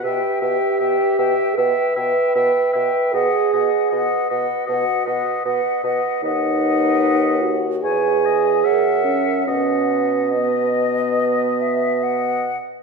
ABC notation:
X:1
M:4/4
L:1/8
Q:1/4=76
K:B
V:1 name="Flute"
=g g g g g g g g | f f f f f f f f | f4 g2 f2 | f2 d3 e f2 |]
V:2 name="Oboe"
e e e e e e e e | d d d d d d d d | d4 c d e2 | d2 d4- d z |]
V:3 name="Clarinet"
B B B B B B B B | B B B B B B B B | B4 B2 A2 | B2 B4- B z |]
V:4 name="French horn"
=G4 B4 | G3 z F2 z2 | D3 F G3 C | C2 B,4- B, z |]
V:5 name="Bassoon" clef=bass
B,, B,, B,, B,, B,, B,, B,, B,, | B,, B,, B,, B,, B,, B,, B,, B,, | D,,4 E,,2 F,,2 | B,,6- B,, z |]